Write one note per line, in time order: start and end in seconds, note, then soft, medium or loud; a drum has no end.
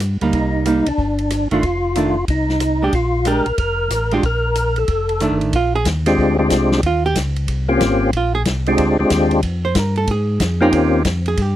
0.00 0.17 G2 medium
0.00 cross-stick soft
0.00 hi-hat pedal soft
0.00 ride soft
0.21 0.32 D2 medium
0.21 0.63 G3 soft
0.21 0.64 A#3 medium
0.21 0.64 D#4 medium
0.21 ride soft
0.33 0.83 C2 medium
0.33 0.89 D#4 medium
0.33 kick soft
0.33 ride soft
0.65 0.84 G3 soft
0.65 0.85 A#3 medium
0.65 0.85 D#4 medium
0.65 hi-hat pedal soft
0.65 ride medium
0.86 0.92 C2 soft
0.86 1.48 D4 medium
0.86 ride medium
0.98 1.47 G1 medium
0.98 kick soft
1.19 ride soft
1.30 cross-stick soft
1.30 hi-hat pedal soft
1.30 ride medium
1.51 1.62 G1 medium
1.51 1.62 D#3 medium
1.51 1.62 A3 medium
1.51 1.63 D4 medium
1.51 2.25 F4 medium
1.51 ride soft
1.63 2.25 F1 medium
1.63 kick soft
1.63 ride soft
1.95 2.14 D#3 soft
1.95 2.15 A3 soft
1.95 2.15 D4 soft
1.95 hi-hat pedal soft
1.95 ride medium
2.28 2.90 C2 medium
2.28 2.84 D#4 medium
2.28 kick soft
2.28 ride medium
2.49 snare soft
2.60 cross-stick medium
2.60 hi-hat pedal soft
2.60 ride medium
2.82 2.92 G#3 medium
2.82 2.93 D4 medium
2.82 2.93 G4 medium
2.93 3.42 A#1 medium
2.93 3.27 F4 medium
2.93 kick soft
2.93 ride soft
3.25 3.44 G#3 soft
3.25 3.45 D4 soft
3.25 3.45 G4 medium
3.25 3.58 A#4 medium
3.25 hi-hat pedal soft
3.25 ride medium
3.46 3.52 A#1 soft
3.46 ride soft
3.58 3.88 F1 medium
3.58 4.14 A#4 medium
3.58 kick soft
3.58 ride medium
3.90 4.20 A1 medium
3.90 cross-stick soft
3.90 hi-hat pedal medium
3.90 ride soft
4.11 4.22 G#3 medium
4.11 4.23 D4 medium
4.11 4.25 F4 medium
4.11 4.23 G4 medium
4.11 ride soft
4.23 4.85 A#1 medium
4.23 4.79 A#4 medium
4.23 kick soft
4.23 ride soft
4.55 hi-hat pedal soft
4.55 ride medium
4.76 5.38 A4 medium
4.76 ride soft
4.88 5.28 F1 medium
4.88 kick soft
4.88 ride soft
5.09 ride soft
5.20 5.53 D#3 medium
5.20 5.54 A3 soft
5.20 5.54 D4 medium
5.20 cross-stick medium
5.20 hi-hat pedal soft
5.20 ride soft
5.31 5.41 G1 medium
5.41 5.52 A1 medium
5.41 ride soft
5.53 5.85 A#1 medium
5.53 5.75 F4 medium
5.53 kick soft
5.53 ride medium
5.75 5.86 G#4 medium
5.85 6.17 D#2 medium
5.85 kick soft
5.85 snare medium
5.85 hi-hat pedal medium
5.85 ride medium
6.06 6.37 G#3 medium
6.06 6.37 C4 medium
6.06 6.37 D4 medium
6.06 6.37 F4 medium
6.06 6.37 G4 medium
6.06 snare soft
6.06 ride medium
6.18 6.50 D2 medium
6.18 kick soft
6.39 6.81 G#3 medium
6.39 6.81 C4 medium
6.39 6.81 D4 medium
6.39 6.81 F4 medium
6.39 6.81 G4 medium
6.50 6.82 C2 medium
6.50 kick soft
6.50 snare medium
6.50 hi-hat pedal medium
6.50 ride medium
6.72 snare medium
6.83 7.14 D#2 medium
6.83 7.05 F4 medium
6.83 kick soft
6.83 ride medium
7.06 7.16 G4 medium
7.15 7.47 C#2 medium
7.15 kick soft
7.15 snare medium
7.15 hi-hat pedal medium
7.15 ride medium
7.36 ride soft
7.48 7.80 C2 medium
7.48 kick soft
7.48 ride medium
7.68 8.11 A#3 medium
7.68 8.11 C4 medium
7.68 8.11 C#4 medium
7.68 8.11 F4 medium
7.68 8.11 G4 medium
7.81 8.12 G#1 medium
7.81 kick soft
7.81 snare medium
7.81 hi-hat pedal medium
7.81 ride medium
8.13 8.45 A#1 medium
8.13 8.34 F4 medium
8.13 kick soft
8.13 ride medium
8.35 8.42 G#4 medium
8.45 8.77 C2 medium
8.45 kick soft
8.45 snare medium
8.45 hi-hat pedal medium
8.45 ride medium
8.66 8.97 G#3 medium
8.66 8.97 C4 medium
8.66 8.98 D4 medium
8.66 8.98 F4 medium
8.66 8.98 G4 medium
8.66 ride soft
8.78 8.97 D2 medium
8.78 kick soft
8.78 ride medium
8.99 9.05 D2 soft
8.99 9.41 G#3 medium
8.99 9.41 C4 medium
8.99 9.41 D4 medium
8.99 9.41 F4 medium
8.99 9.41 G4 medium
9.10 9.42 D#2 medium
9.10 kick soft
9.10 snare medium
9.10 hi-hat pedal soft
9.10 ride medium
9.31 ride soft
9.43 9.74 F2 medium
9.43 kick soft
9.43 ride medium
9.65 9.79 C5 medium
9.75 10.07 G2 medium
9.75 9.97 A#4 medium
9.75 kick soft
9.75 snare medium
9.75 hi-hat pedal soft
9.75 ride medium
9.96 10.08 A4 medium
9.96 ride soft
10.07 10.39 G#2 medium
10.07 10.59 G#4 medium
10.07 kick soft
10.07 ride medium
10.40 10.72 F2 medium
10.40 kick soft
10.40 snare medium
10.40 hi-hat pedal soft
10.40 ride medium
10.61 11.03 A#3 medium
10.61 11.03 C4 medium
10.61 11.03 C#4 medium
10.61 11.03 D#4 medium
10.61 11.03 F4 medium
10.61 11.03 G4 medium
10.72 11.04 D#2 medium
10.72 kick soft
10.72 ride medium
11.05 11.36 F2 medium
11.05 kick soft
11.05 snare medium
11.05 hi-hat pedal medium
11.05 ride medium
11.26 11.42 G#4 medium
11.26 ride soft
11.37 11.56 G2 medium
11.37 kick soft
11.37 ride medium
11.42 11.56 G4 medium